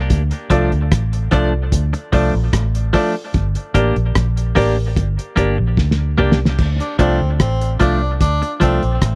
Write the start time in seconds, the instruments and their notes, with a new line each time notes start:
0.10 fingered electric bass D2, kick, closed hi-hat
0.31 closed hi-hat
0.50 fingered electric bass C2, clean electric guitar F3 A3 D4, upright piano F4 A4 D5, kick, closed hi-hat
0.72 fingered electric bass D2, closed hi-hat
0.92 fingered electric bass A1, kick, cross-stick, closed hi-hat
1.13 closed hi-hat
1.31 fingered electric bass C2, clean electric guitar F3 A3 D4, upright piano F4 A4 D5, kick, closed hi-hat
1.54 upright piano A4 D5
1.72 fingered electric bass D2, kick, closed hi-hat
1.93 muted clean electric guitar stroke, closed hi-hat
2.12 fingered electric bass C2, clean electric guitar F3 A3 D4, upright piano F4 A4 D5, kick, open hi-hat
2.35 fingered electric bass A#1
2.53 fingered electric bass A1, kick, cross-stick, closed hi-hat
2.75 closed hi-hat
2.93 clean electric guitar F3 A3 D4, upright piano F4 A4 D5, kick, open hi-hat
3.34 fingered electric bass G1, kick, closed hi-hat
3.55 closed hi-hat
3.74 fingered electric bass A1, clean electric guitar A#3 D4 G4, upright piano G4 A#4 D5, kick, closed hi-hat
3.96 fingered electric bass A#1, closed hi-hat
4.15 fingered electric bass A#1, kick, cross-stick, closed hi-hat
4.37 closed hi-hat
4.55 fingered electric bass A1, clean electric guitar A#3 D4 G4, upright piano G4 A#4 D5, kick, open hi-hat
4.97 fingered electric bass G1, kick, closed hi-hat
5.19 closed hi-hat
5.36 fingered electric bass G1, clean electric guitar A#3 D4 G4, upright piano G4 A#4 D5, kick, closed hi-hat
5.58 fingered electric bass A#1, muted clean electric guitar stroke
5.77 fingered electric bass D2, kick, snare
5.91 snare
6.18 fingered electric bass C2, clean electric guitar A#3 D4 G4, upright piano G4 A#4 D5, mid tom
6.32 snare
6.45 snare
6.58 fingered electric bass D2, kick, crash
6.80 tenor saxophone D4, closed hi-hat
6.99 fingered electric bass C2, clean electric guitar F3 A3 D4, tenor saxophone C4, upright piano F4 A4 D5, kick, closed hi-hat
7.21 fingered electric bass D2
7.40 fingered electric bass A1, tenor saxophone C4, kick, cross-stick, closed hi-hat
7.61 closed hi-hat
7.80 fingered electric bass C2, clean electric guitar F3 A3 D4, tenor saxophone D4, upright piano F4 A4 D5, kick, closed hi-hat
8.03 upright piano A4 D5
8.21 fingered electric bass D2, tenor saxophone D4, kick, closed hi-hat
8.42 muted clean electric guitar stroke, closed hi-hat
8.60 fingered electric bass C2, clean electric guitar F3 A3 D4, tenor saxophone C4, upright piano F4 A4 D5, kick, closed hi-hat
8.83 fingered electric bass A#1, closed hi-hat
9.01 fingered electric bass A1, kick, cross-stick, closed hi-hat